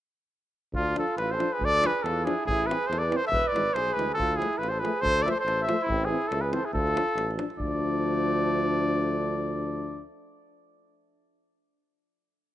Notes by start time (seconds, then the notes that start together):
0.72 D2 F4, davul low
0.77 D4
0.95 F3 D4 A4, davul high
1.00 F4
1.08 davul high
1.17 A1 B4, davul high
1.21 F4
1.31 A4 C5
1.38 F3 D4, davul high
1.53 G#4 B4
1.60 D2, davul low
1.65 A4 D5
1.81 F3 D4, davul high
1.86 G#4 B4
1.95 davul high
2.03 E2 F4 A4, davul high
2.25 F3 D4 G#4, davul high
2.29 E4
2.45 A1 G#4, davul low
2.50 E4
2.66 E3 C4 B4
2.71 G#4, davul high
2.83 davul high
2.87 E2 C5
2.91 A4, davul high
2.99 D5
3.03 B4
3.09 E3 C4, davul high
3.16 C5
3.24 A4 E5
3.29 E1 B4
3.33 davul low
3.46 D5, davul high
3.52 G#1 E3 G#3 B4, davul high
3.67 davul high
3.74 B1 G#4 C5, davul high
3.88 davul high
3.93 D2 E3 G#3 G#4 B4
3.99 davul high
4.12 D2 A4, davul high
4.17 F4, davul low
4.36 F3 A3 E4 G#4
4.42 davul high
4.53 davul high
4.58 A1 B4
4.62 F4, davul high
4.69 A4 C5
4.79 F3 A3 G#4 B4
4.85 davul high
5.01 D2 A4 C5
5.05 davul low
5.22 F3 A3 B4 D5 E5
5.28 C5, davul high
5.35 A4, davul high
5.40 C5
5.44 A1 A4, davul high
5.62 E5
5.67 F3 A3 C5, davul high
5.82 E4
5.87 A1 C4, davul low
6.05 E3 G#4
6.09 C4 E4
6.22 davul high
6.28 C#2 E4 A4, davul high
6.41 G#4 B4
6.51 E3 C4 A4 C5, davul high
6.64 E4 G#4
6.73 D2 A4, davul low
6.78 F4
6.87 davul high
6.94 F3 D4, davul high
7.09 davul high
7.15 A1, davul high
7.31 davul high
7.36 F3 D4, davul high
7.50 davul high
7.56 D2 F3 A3 D4 D5, davul low